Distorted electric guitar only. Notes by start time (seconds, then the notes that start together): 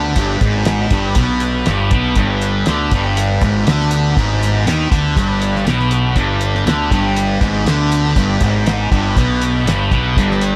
Already playing: D3
0.17 G2
0.42 G#2
0.92 G2
1.16 B2
1.67 G2
1.92 B2
2.17 G2
2.68 D3
2.93 G2
3.44 G#2
3.68 D3
4.17 G#2
4.67 D#3
4.91 D3
5.16 G2
5.66 B2
6.16 G2
6.66 D3
6.92 G2
7.42 G#2
7.67 D3
8.17 G2
8.43 G#2
8.92 G2
9.17 B2
9.66 G2
9.92 B2
10.18 G2